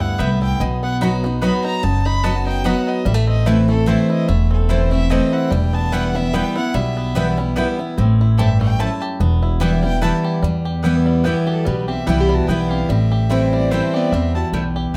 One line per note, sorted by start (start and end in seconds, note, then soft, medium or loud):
0.00 0.13 D2 medium
0.00 0.18 G2 loud
0.00 0.15 G3 medium
0.00 0.18 B3 medium
0.00 0.41 E4 medium
0.00 0.21 F#5 loud
0.18 0.54 C2 medium
0.18 0.59 A2 loud
0.18 0.29 B3 medium
0.18 0.59 B3 medium
0.18 0.29 E4 loud
0.18 0.29 B4 loud
0.18 0.41 E5 loud
0.18 0.29 G5 loud
0.42 0.60 E4 medium
0.42 0.62 G5 loud
0.60 1.50 B1 medium
0.60 1.39 B2 medium
0.60 0.82 B3 medium
0.60 0.82 D#5 medium
0.83 1.23 B3 medium
0.83 0.94 F#5 loud
1.01 1.23 F#3 medium
1.01 1.11 B3 medium
1.01 1.23 B3 medium
1.01 1.60 D#4 medium
1.01 1.23 D#4 loud
1.01 1.11 F#4 loud
1.01 1.23 F#4 loud
1.01 1.11 D#5 medium
1.01 1.11 B5 loud
1.24 1.41 B3 medium
1.24 1.42 D#4 soft
1.24 1.42 F#4 medium
1.42 1.81 F#3 medium
1.42 1.52 B3 loud
1.42 2.01 B3 medium
1.42 1.82 B3 loud
1.42 1.82 D#4 medium
1.42 1.52 F#4 medium
1.42 1.82 F#4 loud
1.42 1.52 D#5 medium
1.42 1.52 B5 loud
1.42 1.63 B5 loud
1.64 1.82 D#4 medium
1.64 1.85 A#5 loud
1.83 2.73 F#1 medium
1.83 2.61 F#2 medium
1.83 2.05 D#4 medium
1.83 2.07 A5 loud
2.05 2.45 D#4 medium
2.05 2.25 B5 loud
2.23 2.63 F#3 medium
2.23 2.34 B3 loud
2.23 2.83 B3 medium
2.23 2.64 B3 loud
2.23 2.64 D#4 loud
2.23 2.34 F#4 loud
2.23 2.64 F#4 loud
2.23 2.34 D#5 loud
2.23 2.46 A5 loud
2.23 2.34 B5 loud
2.46 2.64 D#4 medium
2.46 2.67 G5 loud
2.64 3.04 F#3 medium
2.64 2.75 B3 loud
2.64 3.04 B3 medium
2.64 3.06 D#4 medium
2.64 3.05 D#4 loud
2.64 2.75 F#4 medium
2.64 3.05 F#4 loud
2.64 2.75 D#5 loud
2.64 2.90 F#5 loud
2.64 2.75 B5 loud
2.87 3.05 B3 medium
2.87 3.08 D#5 loud
3.05 3.95 A1 loud
3.05 3.84 A2 loud
3.05 3.14 G3 medium
3.05 3.28 E5 loud
3.14 3.47 A3 medium
3.27 3.84 C4 medium
3.27 3.48 D#5 loud
3.46 3.68 E3 medium
3.46 3.56 A3 loud
3.46 3.69 A3 loud
3.46 3.69 C4 loud
3.46 4.09 E4 medium
3.46 3.56 E4 loud
3.46 3.67 E4 loud
3.46 3.68 B4 medium
3.46 3.57 C5 loud
3.46 3.57 A5 loud
3.68 4.25 A3 medium
3.68 3.87 C4 medium
3.68 3.87 E4 medium
3.68 3.89 A4 loud
3.86 4.26 E3 loud
3.86 4.27 A3 medium
3.86 3.98 A3 medium
3.86 4.47 C4 medium
3.86 4.27 C4 medium
3.86 3.98 E4 loud
3.86 4.28 E4 loud
3.86 4.09 C5 medium
3.86 3.98 C5 loud
3.86 3.98 A5 loud
4.10 4.69 E4 medium
4.10 4.29 D#5 loud
4.28 5.18 E1 medium
4.28 5.07 E2 medium
4.28 4.88 A3 medium
4.28 4.51 E5 medium
4.51 5.07 C4 medium
4.51 4.71 A4 medium
4.69 4.91 E3 medium
4.69 4.79 A3 medium
4.69 4.92 A3 loud
4.69 4.92 C4 loud
4.69 5.32 E4 medium
4.69 4.80 E4 loud
4.69 4.90 E4 loud
4.69 4.91 C5 medium
4.69 4.80 C5 medium
4.69 4.80 A5 medium
4.91 5.48 A3 medium
4.91 5.10 C4 medium
4.91 5.10 E4 medium
4.91 5.12 E5 loud
5.10 5.49 E3 medium
5.10 5.50 A3 medium
5.10 5.21 A3 medium
5.10 5.52 C4 medium
5.10 5.50 C4 loud
5.10 5.21 E4 loud
5.10 5.50 E4 loud
5.10 5.21 C5 loud
5.10 5.35 D#5 loud
5.10 5.21 A5 loud
5.32 5.92 E4 medium
5.32 5.52 F#5 loud
5.51 6.41 E1 loud
5.51 6.30 E2 medium
5.51 6.10 G3 medium
5.51 5.76 G5 loud
5.73 6.30 B3 medium
5.73 5.95 A5 loud
5.92 6.14 E3 loud
5.92 6.15 G3 loud
5.92 6.02 B3 loud
5.92 6.15 B3 loud
5.92 6.55 E4 medium
5.92 6.02 E4 loud
5.92 6.14 E4 loud
5.92 6.03 B4 loud
5.92 6.17 F#5 loud
5.92 6.03 G5 loud
6.15 6.71 G3 medium
6.15 6.34 B3 medium
6.15 6.33 E4 medium
6.15 6.36 E5 loud
6.33 6.55 E3 medium
6.33 6.55 G3 loud
6.33 6.44 B3 medium
6.33 6.93 B3 medium
6.33 6.56 B3 medium
6.33 6.44 E4 medium
6.33 6.54 E4 medium
6.33 6.44 B4 loud
6.33 6.56 G5 loud
6.33 6.44 G5 loud
6.56 6.75 B3 soft
6.56 6.74 E4 medium
6.56 7.16 E4 medium
6.56 6.77 F#5 loud
6.74 7.64 B1 medium
6.74 7.53 B2 loud
6.74 7.34 G3 medium
6.74 7.38 E5 medium
6.97 7.53 B3 medium
7.15 7.37 E3 loud
7.15 7.37 G3 loud
7.15 7.25 B3 medium
7.15 7.37 B3 loud
7.15 7.25 E4 medium
7.15 7.79 E4 medium
7.15 7.36 E4 loud
7.15 7.26 B4 medium
7.15 7.26 G5 loud
7.37 7.94 G3 medium
7.37 7.57 B3 medium
7.37 7.56 E4 medium
7.56 7.78 E3 medium
7.56 7.78 G3 medium
7.56 7.66 B3 loud
7.56 7.97 B3 medium
7.56 7.79 B3 medium
7.56 7.66 E4 loud
7.56 7.77 E4 loud
7.56 7.67 B4 loud
7.56 7.67 G5 loud
7.78 7.97 E4 medium
7.78 8.21 E4 medium
7.98 8.87 A1 loud
7.98 8.76 A2 medium
7.98 8.56 C4 medium
8.21 8.79 E4 medium
8.37 8.78 G2 loud
8.37 8.48 A3 medium
8.37 8.48 E4 medium
8.37 8.98 G4 medium
8.37 8.48 C5 loud
8.37 8.60 E5 loud
8.37 8.48 A5 loud
8.61 9.17 A3 medium
8.61 8.82 G5 loud
8.79 9.19 F#2 loud
8.79 8.89 A3 medium
8.79 8.89 E4 loud
8.79 9.42 E4 medium
8.79 8.89 C5 loud
8.79 8.90 A5 loud
8.79 9.02 A5 loud
9.02 9.20 G4 medium
9.20 10.09 E1 loud
9.20 9.99 E2 loud
9.20 9.79 B3 medium
9.43 9.99 E4 medium
9.60 9.82 E3 loud
9.60 9.83 G3 loud
9.60 9.71 B3 medium
9.60 9.83 B3 loud
9.60 9.71 E4 loud
9.60 9.82 E4 loud
9.60 10.20 G4 medium
9.60 9.71 B4 loud
9.60 9.83 E5 medium
9.60 9.71 G5 loud
9.83 10.39 G3 medium
9.83 10.02 B3 soft
9.83 10.02 E4 medium
9.83 10.01 G5 loud
10.01 10.41 E3 medium
10.01 10.42 G3 medium
10.01 10.12 B3 loud
10.01 10.42 B3 loud
10.01 10.12 E4 loud
10.01 10.43 E4 medium
10.01 10.42 E4 loud
10.01 10.12 B4 loud
10.01 10.12 G5 loud
10.01 10.16 A5 loud
10.24 10.43 G4 medium
10.42 11.32 E2 medium
10.42 11.22 E2 medium
10.42 11.05 G3 medium
10.65 11.46 G4 medium
10.83 11.23 E3 medium
10.83 11.24 G3 medium
10.83 10.93 B3 medium
10.83 11.24 B3 loud
10.83 10.94 E4 medium
10.83 12.06 E4 medium
10.83 11.24 E4 loud
10.83 10.94 B4 medium
10.83 10.94 G5 loud
11.06 11.65 G3 medium
11.24 11.46 E3 medium
11.24 11.65 E3 medium
11.24 11.65 G3 medium
11.24 11.34 B3 medium
11.24 11.84 B3 medium
11.24 11.65 B3 medium
11.24 11.35 E4 medium
11.24 11.65 E4 medium
11.24 11.47 G4 medium
11.24 11.35 B4 loud
11.24 11.35 G5 loud
11.47 11.66 F#3 medium
11.47 11.88 G4 medium
11.47 11.69 A4 medium
11.65 11.96 B1 medium
11.65 12.45 B2 medium
11.65 12.29 G3 medium
11.65 11.89 G3 medium
11.65 11.88 B4 medium
11.88 12.07 C4 medium
11.88 12.70 G4 medium
11.88 12.09 E5 medium
12.07 12.42 C2 medium
12.07 12.47 E3 loud
12.07 12.47 G3 loud
12.07 12.17 B3 medium
12.07 12.48 B3 loud
12.07 12.20 E4 medium
12.07 13.30 E4 medium
12.07 12.17 E4 medium
12.07 12.48 E4 loud
12.07 12.17 B4 medium
12.07 12.22 G5 medium
12.07 12.17 G5 medium
12.20 12.35 G4 medium
12.20 12.36 B5 medium
12.29 12.89 G3 medium
12.34 12.49 F#4 medium
12.34 12.49 A5 medium
12.47 12.83 B1 medium
12.47 12.88 E3 medium
12.47 12.88 G3 medium
12.47 12.58 B3 medium
12.47 12.89 B3 medium
12.47 12.58 E4 medium
12.47 12.72 E4 medium
12.47 12.89 E4 loud
12.47 12.59 B4 loud
12.47 12.71 G5 medium
12.47 12.59 G5 medium
12.70 12.89 C4 medium
12.70 13.11 G4 medium
12.70 12.91 F5 medium
12.89 13.79 A1 medium
12.89 13.68 A2 loud
12.89 13.52 G3 medium
12.89 13.53 C4 medium
12.89 13.53 E5 medium
13.12 13.93 G4 medium
13.30 13.69 E3 loud
13.30 13.70 G3 medium
13.30 13.40 A3 medium
13.30 13.70 C4 loud
13.30 13.40 E4 loud
13.30 13.90 E4 medium
13.30 13.70 E4 loud
13.30 13.41 C5 medium
13.30 13.41 G5 loud
13.53 14.12 G3 medium
13.53 13.74 B3 medium
13.53 13.72 D5 medium
13.71 14.11 E3 medium
13.71 14.11 G3 medium
13.71 13.81 A3 medium
13.71 13.96 A3 medium
13.71 14.30 C4 medium
13.71 14.12 C4 loud
13.71 13.81 E4 medium
13.71 14.12 E4 medium
13.71 13.96 C5 medium
13.71 13.81 C5 loud
13.71 13.82 G5 loud
13.94 14.15 B3 medium
13.94 14.75 G4 medium
13.94 14.14 D5 medium
14.12 14.42 E2 medium
14.12 14.91 E2 medium
14.12 14.53 G3 medium
14.12 14.36 C4 medium
14.12 14.34 E5 medium
14.35 14.91 E4 medium
14.35 14.53 F#4 medium
14.35 14.46 A5 medium
14.52 14.88 B1 medium
14.52 14.93 E3 medium
14.52 14.97 G3 medium
14.52 14.63 A3 medium
14.52 14.63 E4 medium
14.52 14.64 C5 medium
14.52 14.64 G5 medium
14.76 14.97 G4 medium